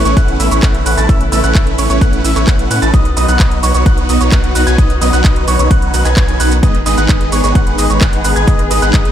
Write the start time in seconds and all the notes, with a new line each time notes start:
Already playing: C#3 A3 B3 E4
0.05 A1 A3 C#4 E4 B4 C#5 C#6, closed hi-hat, shaker
0.17 A1 A3 C#4 E4 B4 F#5 F#6, kick, closed hi-hat, shaker
0.28 closed hi-hat
0.40 A1 A3 C#4 E4 B4 E5 E6, open hi-hat, shaker
0.51 A1 A3 C#4 E4 B4 C#5 C#6, closed hi-hat, shaker
0.63 A1 A3 E4 B4 F#5 F#6, kick, cross-stick, clap, closed hi-hat, shaker
0.75 closed hi-hat
0.86 A1 A3 C#4 E4 B4 F#5 F#6, open hi-hat, shaker
0.97 A1 A3 C#4 E4 B4 A5 A6, closed hi-hat, shaker
1.09 A1 A3 C#4 E4 E5 E6, kick, closed hi-hat, shaker
1.21 closed hi-hat
1.32 A1 A3 C#4 E4 B4 E5 E6, open hi-hat, shaker
1.44 A1 A3 C#4 E4 B4 F#5 F#6, closed hi-hat, shaker
1.55 A1 A3 C#4 E4 E5 E6, kick, clap, closed hi-hat, shaker
1.67 closed hi-hat
1.78 A1 A3 C#4 E4 B4 C#5 C#6, open hi-hat, shaker
1.90 A1 A3 C#4 E4 B4 C#5 C#6, closed hi-hat, shaker
2.01 A1 A3 C#4 E4 B4 F#5 F#6, kick, closed hi-hat, shaker
2.13 closed hi-hat
2.24 A1 A3 C#4 E4 B4 E5 E6, open hi-hat, shaker
2.36 A1 A3 C#4 E4 B4 C#5 C#6, clap, closed hi-hat, shaker
2.47 A1 A3 E4 B4 F#6, kick, cross-stick, clap, closed hi-hat, shaker
2.59 closed hi-hat
2.71 A2 A3 C#4 E4 B4 F#5 F#6, open hi-hat, shaker
2.82 A1 A3 C#4 E4 B4 A5 A6, closed hi-hat, shaker
2.94 B1 D#3 F#3 B3 D#4 F#4 B4 D#5 D#6, kick, closed hi-hat, shaker
3.05 closed hi-hat
3.17 B1 F#3 B3 D#4 B4 D#5 D#6, open hi-hat, shaker
3.28 B1 F#3 B3 D#4 B4 F#5 F#6, closed hi-hat, shaker
3.40 B1 F#3 B3 D#4 B4 D#5 D#6, kick, clap, closed hi-hat, shaker
3.51 closed hi-hat
3.63 B1 F#3 B3 D#4 B4 C#5 C#6, open hi-hat, shaker
3.74 B1 F#3 B3 D#4 B4 C#5 C#6, closed hi-hat, shaker
3.86 B1 F#3 B3 D#4 B4 F#5 F#6, kick, closed hi-hat, shaker
3.98 closed hi-hat
4.09 B1 F#3 B3 D#4 B4 D#5 D#6, open hi-hat, shaker
4.21 B1 F#3 B3 D#4 B4 C#5 C#6, closed hi-hat, shaker
4.32 B1 F#3 B3 D#4 B4 F#6, kick, cross-stick, clap, closed hi-hat, shaker
4.44 closed hi-hat
4.55 B1 F#3 B3 D#4 B4 F#5 F#6, open hi-hat, shaker
4.67 B1 F#3 B3 D#4 B4 G#5 G#6, closed hi-hat, shaker
4.78 B1 F#3 B3 C#4 D#4 B4 D#5 D#6, kick, closed hi-hat, shaker
4.90 closed hi-hat
5.01 B1 F#3 B3 D#4 B4 D#5 D#6, open hi-hat, shaker
5.13 B1 F#3 B3 D#4 B4 F#5 F#6, closed hi-hat, shaker
5.24 B1 F#3 B3 D#4 B4 D#5 D#6, kick, clap, closed hi-hat, shaker
5.36 closed hi-hat
5.47 B1 F#3 B3 D#4 B4 C#5 C#6, open hi-hat, shaker
5.59 B1 F#3 B3 D#4 B4 C#5 C#6, closed hi-hat, shaker
5.71 B1 F#3 B3 D#4 F#5 F#6, kick, closed hi-hat, shaker
5.82 closed hi-hat
5.94 B1 F#3 B3 D#4 B4 F#5 F#6, open hi-hat, shaker
6.05 B1 F#3 B3 D#4 B4 G#5 G#6, clap, closed hi-hat, shaker
6.17 B1 F#3 B3 D#4 G#6, kick, cross-stick, clap, closed hi-hat, shaker
6.28 closed hi-hat
6.40 B1 F#3 B3 D#4 B4 F#5 F#6, open hi-hat, shaker
6.52 closed hi-hat, shaker
6.63 G#1 G#3 B3 D#4 G#4 B4 D#5 D#6, kick, closed hi-hat, shaker
6.75 closed hi-hat
6.86 G#1 G#3 B3 D#4 B4 D#5 D#6, open hi-hat, shaker
6.98 G#1 G#3 B3 D#4 B4 F#5 F#6, closed hi-hat, shaker
7.09 G#1 G#3 B3 D#4 B4 D#5 D#6, kick, clap, closed hi-hat, shaker
7.21 closed hi-hat
7.32 G#1 G#3 B3 D#4 B4 C#5 C#6, open hi-hat, shaker
7.44 G#1 G#3 B3 D#4 B4 C#5 C#6, closed hi-hat, shaker
7.55 G#1 G#3 B3 D#4 B4 F#5 F#6, kick, closed hi-hat, shaker
7.67 closed hi-hat
7.78 G#1 G#3 B3 D#4 B4 D#5 D#6, open hi-hat, shaker
7.90 G#1 G#3 B3 D#4 B4 C#5 C#6, closed hi-hat, shaker
8.01 G#1 B3 F#5 F#6, kick, cross-stick, clap, closed hi-hat, shaker
8.13 closed hi-hat
8.24 G#1 G#3 B3 D#4 B4 F#5 F#6, open hi-hat, shaker
8.36 G#1 G#3 B3 D#4 B4 G#5 G#6, closed hi-hat, shaker
8.47 G#1 G#3 B3 D#4 B4 D#5 D#6, kick, closed hi-hat, shaker
8.59 closed hi-hat
8.71 G#1 G#3 B3 D#4 B4 D#5 D#6, open hi-hat, shaker
8.82 G#1 G#3 B3 D#4 B4 F#5 F#6, closed hi-hat, shaker
8.93 G#1 G#3 B3 D#4 B4 D#5 D#6, kick, clap, closed hi-hat, shaker
9.05 closed hi-hat